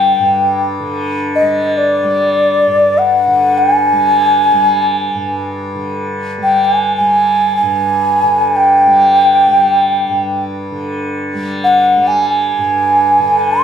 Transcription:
Already playing: G2 D3 G3 G5
0.20 G2
0.80 D3
1.35 D#5
1.41 G3
1.78 D5
2.03 G3
2.67 G2
2.98 F#5
3.27 D3
3.58 G#5
3.92 G3
4.52 G3
5.15 G2
5.75 D3
6.38 G3
6.43 G5
6.65 G#5
6.97 G3 G#5
7.56 G#5
7.63 G2
8.23 D3
8.56 G5
8.86 G3
9.47 G3
10.09 G2
10.71 D3
11.34 G3
11.64 F#5
11.97 G3
12.07 G#5
12.29 G#5
12.58 G2
13.20 D3

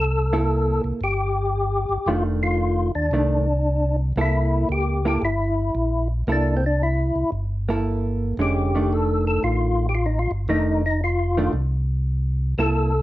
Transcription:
Already playing: C2
0.00 A4
0.33 A#3 E4 A4
0.84 C2
1.01 G1 G4
1.89 G1
2.06 F1 D#3 A3 D4 F4
2.43 F4
2.95 D#2 D4
3.11 C2 D#3 A3 D4
4.16 C2 A#3 E4 A4
4.21 E4
4.69 C#2 G4
5.05 A#3 E4 G4 A4
5.22 G1 E4
5.75 A#1
6.27 C2 A#3 E4 A4
6.32 D4
6.57 C4
6.66 D4
6.83 E4
7.16 C2
7.32 G1
7.69 A#3 E4 A4
8.38 F1 D3 G#3 C#4
8.42 G4
8.75 D#3 A3 D4
8.93 A4
9.27 A4
9.43 A1 F4
9.89 G4
9.95 F4
10.06 D#4
10.19 F4
10.31 G1
10.48 F1 D#3 A3 D4 D#4
10.86 D#4
11.04 F4
11.37 D#3 A3 D4
11.53 C2
12.58 C2 A#3 E4 A4

